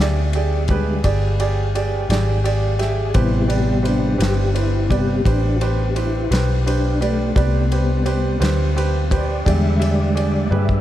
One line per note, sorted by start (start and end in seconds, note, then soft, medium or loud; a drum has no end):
0.00 1.01 D2 medium
0.00 0.26 G4 medium
0.00 0.27 G#4 medium
0.00 0.27 D5 medium
0.00 snare loud
0.33 0.61 G4 medium
0.33 0.62 G#4 medium
0.33 0.62 D5 medium
0.33 ride medium
0.68 1.01 D3 soft
0.68 1.02 G3 soft
0.68 1.02 G#3 medium
0.68 0.96 G4 medium
0.68 0.96 G#4 medium
0.68 0.96 B4 medium
0.68 kick medium
0.68 ride medium
1.04 2.07 G1 medium
1.04 1.31 G4 medium
1.04 1.31 G#4 medium
1.04 1.31 D5 medium
1.04 kick medium
1.04 ride medium
1.40 1.66 G4 medium
1.40 1.66 G#4 medium
1.40 1.67 D5 medium
1.40 ride medium
1.75 2.01 G4 medium
1.75 2.01 G#4 medium
1.75 2.01 D5 medium
1.75 ride medium
2.09 3.12 G#1 loud
2.09 2.36 G4 medium
2.09 2.36 G#4 medium
2.09 2.36 D5 medium
2.09 snare loud
2.09 ride medium
2.44 2.71 G4 medium
2.44 2.71 G#4 medium
2.44 2.71 D5 medium
2.44 ride medium
2.79 3.06 G4 medium
2.79 2.83 G4 medium
2.79 3.06 G#4 soft
2.79 3.06 E5 medium
2.79 snare soft
2.79 ride medium
2.84 3.16 G#4 loud
3.14 4.17 A1 medium
3.14 4.16 C3 medium
3.14 4.17 G3 soft
3.14 4.17 B3 medium
3.14 3.41 G4 medium
3.14 3.41 B4 medium
3.14 3.41 C5 medium
3.14 kick loud
3.14 ride medium
3.18 3.51 E4 medium
3.48 3.75 G4 medium
3.48 3.75 B4 medium
3.48 3.76 D5 medium
3.48 ride medium
3.54 3.86 G4 medium
3.83 4.10 G4 medium
3.83 4.10 B4 medium
3.83 4.11 C5 medium
3.83 ride medium
3.88 4.21 D4 medium
4.18 5.22 G1 medium
4.18 4.46 G4 medium
4.18 4.45 B4 soft
4.18 4.45 C5 medium
4.18 ride medium
4.22 4.55 G4 medium
4.22 snare loud
4.54 4.90 E4 medium
4.54 4.81 G4 medium
4.54 4.81 B4 medium
4.54 4.81 C5 medium
4.54 ride medium
4.89 5.21 C3 soft
4.89 5.21 G3 soft
4.89 5.22 B3 medium
4.89 5.16 G4 medium
4.89 5.25 G4 medium
4.89 5.17 B4 medium
4.89 5.17 D5 medium
4.89 kick medium
4.89 ride medium
5.25 6.27 A1 medium
5.25 5.60 D4 medium
5.25 5.52 G4 medium
5.25 5.51 B4 medium
5.25 5.52 C5 medium
5.25 kick medium
5.25 ride medium
5.56 5.60 F#4 medium
5.60 5.94 G4 loud
5.60 5.87 G4 medium
5.60 5.87 B4 medium
5.60 5.87 C5 medium
5.60 ride medium
5.95 6.31 E4 medium
5.95 6.22 G4 medium
5.95 6.22 B4 soft
5.95 6.22 C5 medium
5.95 ride medium
6.30 7.33 B1 loud
6.30 6.64 G4 medium
6.30 6.57 G4 medium
6.30 6.57 B4 soft
6.30 6.57 C5 medium
6.30 snare loud
6.30 ride medium
6.66 7.00 D4 medium
6.66 6.92 G4 medium
6.66 6.92 B4 medium
6.66 6.92 C5 medium
6.66 ride medium
7.01 7.69 A3 loud
7.01 7.27 G4 medium
7.01 7.27 B4 medium
7.01 7.27 D5 medium
7.01 ride medium
7.36 8.38 C2 medium
7.36 8.38 C3 medium
7.36 8.38 G3 soft
7.36 7.62 G4 medium
7.36 7.62 B4 medium
7.36 7.62 D5 medium
7.36 kick loud
7.36 ride medium
7.72 7.98 G4 medium
7.72 7.98 B4 medium
7.72 7.98 C5 medium
7.72 ride medium
8.06 8.32 G4 medium
8.06 8.32 B4 medium
8.06 8.32 C5 medium
8.06 ride medium
8.40 9.43 D2 medium
8.40 8.67 G4 medium
8.40 8.66 B4 medium
8.40 8.67 C5 medium
8.40 snare loud
8.40 ride medium
8.76 9.02 G4 medium
8.76 9.03 B4 medium
8.76 9.03 C5 medium
8.76 ride medium
9.11 9.37 G4 medium
9.11 9.37 B4 medium
9.11 9.37 C5 medium
9.11 9.46 D5 medium
9.11 kick medium
9.11 ride medium
9.45 10.48 E2 medium
9.45 10.47 D3 medium
9.45 10.48 G3 medium
9.45 10.48 G#3 medium
9.45 9.72 G4 medium
9.45 9.72 G#4 medium
9.45 9.72 D5 medium
9.45 9.81 E5 medium
9.45 kick medium
9.45 ride medium
9.79 10.07 G4 medium
9.79 10.06 G#4 medium
9.79 10.16 D5 medium
9.79 10.06 E5 medium
9.79 ride medium
10.15 10.42 G4 medium
10.15 10.42 G#4 medium
10.15 10.20 C#5 medium
10.15 10.42 D5 medium
10.15 ride medium
10.22 10.53 D5 medium
10.51 10.81 G2 loud
10.51 10.77 G4 medium
10.51 10.78 G#4 medium
10.51 10.77 B4 medium
10.51 high tom medium
10.56 10.81 E5 medium
10.69 kick medium